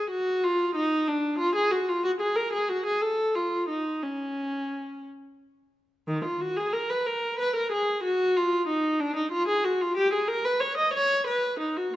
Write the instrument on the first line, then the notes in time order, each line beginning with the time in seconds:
viola
0.11 F#4
0.44 F4
0.75 D#4
1.08 D4
1.39 F4
1.56 G#4
1.72 F#4
1.89 F4
2.04 F#4
2.21 G#4
2.36 A#4
2.53 G#4
2.69 F#4
2.86 G#4
3.02 A4
3.35 F4
3.69 D#4
4.03 C#4
6.08 D#3
6.25 F4
6.41 F#4
6.57 G#4
6.73 A#4
6.90 B4
7.06 A#4
7.39 B4
7.56 A#4
7.72 G#4
8.04 F#4
8.37 F4
8.68 D#4
9.00 D4
9.16 D#4
9.32 F4
9.48 G#4
9.65 F#4
9.81 F4
9.97 G4
10.14 G#4
10.28 A#4
10.45 B4
10.60 C#5
10.78 D#5
10.94 C#5
11.27 B4
11.60 D#4
11.77 F#4